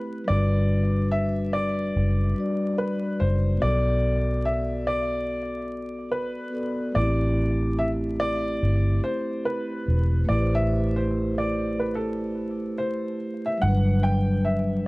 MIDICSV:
0, 0, Header, 1, 4, 480
1, 0, Start_track
1, 0, Tempo, 833333
1, 166, Time_signature, 4, 2, 24, 8
1, 8567, End_track
2, 0, Start_track
2, 0, Title_t, "Upright piano"
2, 0, Program_c, 0, 0
2, 0, Note_on_c, 0, 71, 88
2, 160, Note_on_c, 0, 74, 96
2, 179, Note_off_c, 0, 71, 0
2, 620, Note_off_c, 0, 74, 0
2, 642, Note_on_c, 0, 76, 89
2, 867, Note_off_c, 0, 76, 0
2, 882, Note_on_c, 0, 74, 97
2, 1581, Note_off_c, 0, 74, 0
2, 1603, Note_on_c, 0, 71, 87
2, 1843, Note_on_c, 0, 72, 93
2, 1852, Note_off_c, 0, 71, 0
2, 2068, Note_off_c, 0, 72, 0
2, 2084, Note_on_c, 0, 74, 97
2, 2565, Note_on_c, 0, 76, 93
2, 2580, Note_off_c, 0, 74, 0
2, 2805, Note_on_c, 0, 74, 94
2, 2813, Note_off_c, 0, 76, 0
2, 3503, Note_off_c, 0, 74, 0
2, 3522, Note_on_c, 0, 71, 84
2, 3981, Note_off_c, 0, 71, 0
2, 4004, Note_on_c, 0, 74, 92
2, 4484, Note_on_c, 0, 76, 90
2, 4500, Note_off_c, 0, 74, 0
2, 4538, Note_off_c, 0, 76, 0
2, 4722, Note_on_c, 0, 74, 106
2, 5181, Note_off_c, 0, 74, 0
2, 5206, Note_on_c, 0, 72, 88
2, 5429, Note_off_c, 0, 72, 0
2, 5445, Note_on_c, 0, 71, 87
2, 5925, Note_on_c, 0, 74, 86
2, 5940, Note_off_c, 0, 71, 0
2, 6065, Note_off_c, 0, 74, 0
2, 6076, Note_on_c, 0, 76, 96
2, 6314, Note_on_c, 0, 72, 82
2, 6323, Note_off_c, 0, 76, 0
2, 6538, Note_off_c, 0, 72, 0
2, 6555, Note_on_c, 0, 74, 83
2, 6794, Note_on_c, 0, 71, 72
2, 6803, Note_off_c, 0, 74, 0
2, 6885, Note_on_c, 0, 69, 76
2, 6888, Note_off_c, 0, 71, 0
2, 7362, Note_on_c, 0, 72, 85
2, 7583, Note_off_c, 0, 69, 0
2, 7750, Note_on_c, 0, 76, 79
2, 7766, Note_off_c, 0, 72, 0
2, 7843, Note_on_c, 0, 78, 95
2, 7847, Note_off_c, 0, 76, 0
2, 8082, Note_on_c, 0, 79, 88
2, 8092, Note_off_c, 0, 78, 0
2, 8321, Note_on_c, 0, 76, 85
2, 8332, Note_off_c, 0, 79, 0
2, 8547, Note_off_c, 0, 76, 0
2, 8567, End_track
3, 0, Start_track
3, 0, Title_t, "Vibraphone"
3, 0, Program_c, 1, 11
3, 0, Control_c, 1, 64, 127
3, 0, Note_on_c, 1, 57, 62
3, 0, Note_on_c, 1, 60, 69
3, 0, Note_on_c, 1, 64, 53
3, 0, Note_on_c, 1, 67, 53
3, 133, Note_off_c, 1, 57, 0
3, 140, Note_on_c, 1, 55, 63
3, 143, Note_off_c, 1, 64, 0
3, 153, Note_off_c, 1, 67, 0
3, 159, Note_on_c, 1, 62, 56
3, 173, Control_c, 1, 64, 0
3, 179, Note_on_c, 1, 66, 57
3, 181, Note_off_c, 1, 60, 0
3, 199, Note_on_c, 1, 71, 62
3, 262, Control_c, 1, 64, 127
3, 1330, Note_off_c, 1, 55, 0
3, 1340, Note_off_c, 1, 62, 0
3, 1350, Note_off_c, 1, 66, 0
3, 1351, Note_on_c, 1, 55, 46
3, 1360, Note_off_c, 1, 71, 0
3, 1361, Note_on_c, 1, 62, 43
3, 1371, Note_on_c, 1, 66, 45
3, 1381, Note_on_c, 1, 74, 60
3, 2056, Note_on_c, 1, 59, 61
3, 2068, Note_off_c, 1, 66, 0
3, 2075, Note_on_c, 1, 66, 56
3, 2079, Note_off_c, 1, 55, 0
3, 2084, Note_off_c, 1, 62, 0
3, 2094, Note_off_c, 1, 74, 0
3, 2094, Control_c, 1, 64, 0
3, 2095, Note_on_c, 1, 69, 65
3, 2113, Note_on_c, 1, 74, 70
3, 2201, Control_c, 1, 64, 127
3, 3728, Note_off_c, 1, 59, 0
3, 3738, Note_off_c, 1, 66, 0
3, 3743, Note_on_c, 1, 59, 48
3, 3747, Note_off_c, 1, 69, 0
3, 3753, Note_on_c, 1, 66, 39
3, 3757, Note_off_c, 1, 74, 0
3, 3762, Note_on_c, 1, 69, 48
3, 3772, Note_on_c, 1, 74, 52
3, 3986, Note_on_c, 1, 57, 57
3, 3995, Note_off_c, 1, 59, 0
3, 4000, Note_off_c, 1, 66, 0
3, 4004, Note_off_c, 1, 69, 0
3, 4005, Note_on_c, 1, 64, 58
3, 4009, Note_off_c, 1, 74, 0
3, 4013, Control_c, 1, 64, 0
3, 4024, Note_on_c, 1, 67, 60
3, 4044, Note_on_c, 1, 60, 71
3, 4111, Control_c, 1, 64, 127
3, 5893, Note_off_c, 1, 57, 0
3, 5903, Note_off_c, 1, 64, 0
3, 5904, Note_on_c, 1, 57, 67
3, 5912, Note_off_c, 1, 67, 0
3, 5922, Note_off_c, 1, 60, 0
3, 5923, Note_on_c, 1, 64, 55
3, 5933, Control_c, 1, 64, 0
3, 5943, Note_on_c, 1, 67, 53
3, 5961, Note_on_c, 1, 71, 55
3, 5991, Note_off_c, 1, 71, 0
3, 5999, Note_on_c, 1, 72, 73
3, 6038, Control_c, 1, 64, 127
3, 7812, Note_off_c, 1, 57, 0
3, 7819, Note_on_c, 1, 55, 64
3, 7822, Note_off_c, 1, 64, 0
3, 7832, Note_off_c, 1, 67, 0
3, 7839, Note_on_c, 1, 62, 58
3, 7853, Control_c, 1, 64, 0
3, 7858, Note_on_c, 1, 54, 64
3, 7860, Note_off_c, 1, 72, 0
3, 7878, Note_on_c, 1, 71, 64
3, 7951, Control_c, 1, 64, 127
3, 8567, Note_off_c, 1, 54, 0
3, 8567, Note_off_c, 1, 55, 0
3, 8567, Note_off_c, 1, 62, 0
3, 8567, Note_off_c, 1, 71, 0
3, 8567, End_track
4, 0, Start_track
4, 0, Title_t, "Fingered electric bass"
4, 0, Program_c, 2, 33
4, 172, Note_on_c, 2, 31, 105
4, 1106, Note_off_c, 2, 31, 0
4, 1130, Note_on_c, 2, 30, 86
4, 1336, Note_off_c, 2, 30, 0
4, 1850, Note_on_c, 2, 30, 76
4, 2056, Note_off_c, 2, 30, 0
4, 2090, Note_on_c, 2, 35, 104
4, 3655, Note_off_c, 2, 35, 0
4, 4010, Note_on_c, 2, 33, 106
4, 4945, Note_off_c, 2, 33, 0
4, 4969, Note_on_c, 2, 31, 92
4, 5175, Note_off_c, 2, 31, 0
4, 5690, Note_on_c, 2, 28, 86
4, 5896, Note_off_c, 2, 28, 0
4, 5931, Note_on_c, 2, 33, 95
4, 7495, Note_off_c, 2, 33, 0
4, 7850, Note_on_c, 2, 31, 104
4, 8567, Note_off_c, 2, 31, 0
4, 8567, End_track
0, 0, End_of_file